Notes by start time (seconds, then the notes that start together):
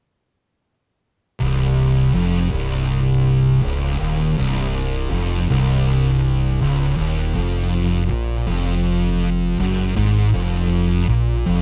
1.40 C1 C2
2.14 F1 F2
2.50 C1 C2
3.62 C#1 C#2
3.99 D#1 D#2
4.37 C1 C2
5.11 F1 F2
5.48 C1 C2
6.61 C#1 C#2
6.97 D#1 D#2
7.35 F1 F2
8.10 A#1 A#2
8.47 F1 F2
9.60 F#1 F#2
9.96 G#1 G#2
10.34 F1 F2
11.09 A#1 A#2
11.46 F1 F2